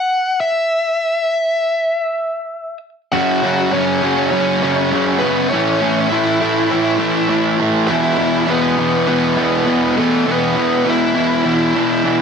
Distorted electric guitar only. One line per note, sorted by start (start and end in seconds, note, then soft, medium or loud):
3.13 3.42 F#2 medium
3.13 3.42 C#3 medium
3.13 3.43 F#3 loud
3.43 3.71 F#2 medium
3.43 3.72 C#3 medium
3.43 3.73 F#3 loud
3.72 4.01 F#2 medium
3.72 4.02 C#3 medium
3.72 4.03 F#3 loud
4.03 4.31 F#2 medium
4.03 4.32 C#3 medium
4.03 4.32 F#3 loud
4.32 4.61 F#2 medium
4.32 4.62 C#3 medium
4.32 4.63 F#3 loud
4.62 4.91 F#2 medium
4.62 4.92 C#3 loud
4.62 4.93 F#3 loud
4.92 5.21 F#2 medium
4.92 5.21 C#3 medium
4.92 5.23 F#3 medium
5.22 5.50 F#2 medium
5.22 5.50 C#3 medium
5.22 5.51 F#3 loud
5.52 5.80 A2 medium
5.52 5.82 E3 loud
5.52 5.81 A3 loud
5.81 6.09 A2 medium
5.81 6.10 E3 medium
5.81 6.11 A3 loud
6.10 6.39 A2 loud
6.10 6.41 E3 medium
6.10 6.40 A3 loud
6.41 6.70 A2 medium
6.41 6.71 E3 medium
6.41 6.70 A3 loud
6.71 6.97 A2 medium
6.71 6.99 E3 medium
6.71 6.99 A3 loud
6.98 7.27 A2 medium
6.98 7.29 E3 loud
6.98 7.28 A3 loud
7.28 7.58 A2 medium
7.28 7.60 E3 medium
7.28 7.60 A3 loud
7.60 7.88 A2 medium
7.60 7.90 E3 medium
7.60 7.89 A3 loud
7.88 8.17 E2 loud
7.88 8.17 B2 loud
7.88 8.19 E3 loud
8.17 8.46 E2 medium
8.17 8.46 B2 medium
8.17 8.48 E3 loud
8.47 8.77 E2 medium
8.47 8.78 B2 medium
8.47 8.79 E3 loud
8.78 9.06 E2 medium
8.78 9.07 B2 loud
8.78 9.08 E3 loud
9.07 9.35 E2 medium
9.07 9.36 B2 medium
9.07 9.36 E3 loud
9.36 9.65 E2 medium
9.36 9.66 B2 loud
9.36 9.66 E3 loud
9.66 9.96 E2 medium
9.66 9.97 B2 medium
9.66 9.97 E3 medium
9.97 10.25 E2 medium
9.97 10.26 B2 medium
9.97 10.27 E3 medium
10.26 10.55 E2 medium
10.26 10.56 B2 medium
10.26 10.57 E3 loud
10.57 10.84 E2 medium
10.57 10.86 B2 medium
10.57 10.86 E3 loud
10.86 11.13 E2 medium
10.86 11.14 B2 loud
10.86 11.15 E3 medium
11.14 11.43 E2 medium
11.14 11.44 B2 medium
11.14 11.45 E3 loud
11.44 11.74 E2 medium
11.44 11.74 B2 loud
11.44 11.75 E3 loud
11.75 12.04 E2 medium
11.75 12.04 B2 loud
11.75 12.04 E3 loud
12.05 12.22 E2 medium
12.05 12.22 B2 medium
12.05 12.22 E3 medium